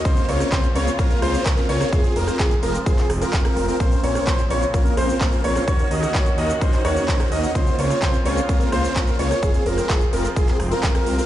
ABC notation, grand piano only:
X:1
M:4/4
L:1/16
Q:1/4=128
K:Bbm
V:1 name="Grand piano"
c2 d2 c z d z B2 c2 B2 d2 | A2 B2 A z B z A2 z B2 B2 B | c2 d2 c z d z B2 c2 B2 d2 | d2 e2 d z e z c2 d2 c2 e2 |
c2 d2 c z d z B2 c2 B2 d2 | A2 B2 A z B z A2 z B2 B2 B |]